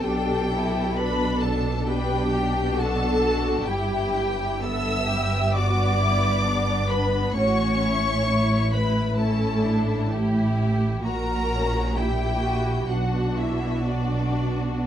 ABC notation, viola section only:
X:1
M:4/4
L:1/8
Q:1/4=65
K:G
V:1 name="Viola section"
G2 B A G2 A2 | [K:Edor] G2 e2 d3 B | c3 B A2 z2 | ^A2 G2 F E D2 |]